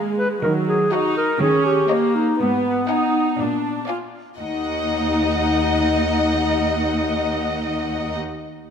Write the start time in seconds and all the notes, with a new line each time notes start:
Already playing: G#3 F5 G#5 A#5
0.18 B4
0.42 D#3 F#3 A#4
0.68 G#4
0.92 D#4 F#4 D#5 F#5 A#5
1.17 A#4
1.41 D#3 C#4 G#4
1.66 G4
1.90 A#3 C#5 D#5 A#5
2.16 D#4
2.39 G#2 B3
2.88 D#4 D#5 F#5 G#5
3.38 A#2 D4
3.87 F4 D5 F5 G#5
4.38 D#2 D#4 D#5 F#5